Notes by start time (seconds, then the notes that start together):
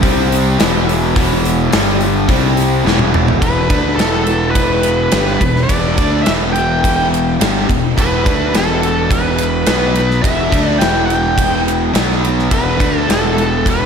0.02 C2 C3 G3 C4, kick, open hi-hat
0.32 open hi-hat
0.58 E1 E2 B2 E3, snare, open hi-hat
0.89 open hi-hat
1.15 E1 E2 B2 E3, kick, open hi-hat
1.45 open hi-hat
1.72 G1 G2 D3 G3, snare, open hi-hat
2.01 open hi-hat
2.28 C2 C3 G3 C4, kick, open hi-hat
2.57 open hi-hat
2.84 E1 E2 B2 E3, snare
2.99 high tom
3.14 mid tom
3.28 floor tom
3.40 E1 E2 B2 E3 B4, kick, ride
3.69 D2 D3 A3 D4, kick, ride
3.96 E1 E2 B2 E3 A4, snare, ride
4.27 ride
4.51 B4
4.55 kick, ride
4.83 ride
5.12 G1 G2 D3 G3, snare, ride
5.27 snare
5.41 E1 E2 B2, kick, ride
5.56 snare
5.63 D5
5.69 E1 E2 B2 E3, kick, ride
5.98 D2 D3 A3 D4, kick, ride
6.23 E2 E5, snare, ride
6.27 E1 B2 E3
6.53 G5, ride
6.84 kick, ride
7.14 ride
7.41 G1 G2 D3 G3, snare, ride
7.69 E1 E2 B2, kick, ride
7.97 E1 E2 B2 E3 B4, kick, ride
8.25 D2 D3 A3 D4, kick, ride
8.53 E1 E2 B2 E3, snare, ride
8.57 A4
8.83 ride
9.11 B4, kick, ride
9.38 ride
9.66 B1 B2 F#3 B3, snare, ride
9.95 ride
10.11 snare
10.22 E1 E2 B2 E3 E5, kick, ride
10.52 D2 D3 A3 D4, kick, ride
10.69 D5
10.78 E1 E2 B2 E3 G5, snare, ride
11.07 G5, ride
11.38 kick, ride
11.68 ride
11.93 B1 B2 F#3 B3, snare, ride
12.11 snare
12.25 ride
12.39 snare
12.51 E1 E2 B2 E3 B4, kick, ride
12.80 D2 D3 A3 D4, kick, ride
12.98 A4
13.08 E1 E2 B2 E3 A4, snare, ride
13.38 ride
13.66 B4, kick, ride